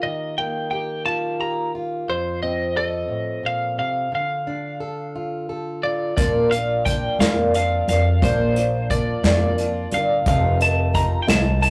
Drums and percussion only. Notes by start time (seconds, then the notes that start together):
6.17 kick, closed hi-hat
6.52 closed hi-hat
6.86 kick, closed hi-hat
7.20 snare, closed hi-hat
7.54 closed hi-hat
7.88 closed hi-hat
8.22 kick, closed hi-hat
8.56 closed hi-hat
8.90 kick, closed hi-hat
9.24 snare, closed hi-hat
9.58 closed hi-hat
9.91 closed hi-hat
10.26 kick, closed hi-hat
10.61 closed hi-hat
10.94 kick, closed hi-hat
11.28 snare, closed hi-hat
11.63 closed hi-hat